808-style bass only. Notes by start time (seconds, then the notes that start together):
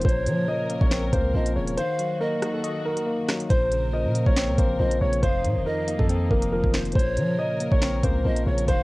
0.05 A#1
0.26 F3
0.81 A#1
1.13 C#2
1.34 A#1
1.56 D#1
3.50 A#1
4.05 A#2
4.26 A#1
4.48 C#2
4.58 A#1
4.80 A#1
5.01 A#1
5.23 F1
5.44 A2
5.56 F1
5.99 F2
6.31 F1
6.64 F1
6.95 A#1
7.17 F3
7.72 A#1
8.03 C#2
8.25 A#1
8.47 A#1
8.68 D#1